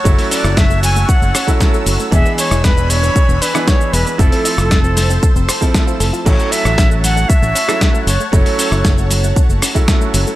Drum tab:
CC |----------------|----------------|----------------|x---------------|
HH |-oo---o---o---o-|--o---o---o---o-|-oo---o---o---o-|--o---o---o---o-|
SH |xxxxxxxxxxxxxxxx|xxxxxxxxxxxxxxxx|xxxxxxxxxxxxxxxx|xxxxxxxxxxxxxxxx|
SD |---ro-----r-o---|---ro------ro---|---ro-o---r-o---|---ro------ro---|
BD |o---o---o--oo---|o---o---o---o---|o---o---o--oo---|o---o---o---o---|

CC |----------------|
HH |-oo---o---o---o-|
SH |xxxxxxxxxxxxxxxx|
SD |---ro-----r-o---|
BD |o---o---o--oo---|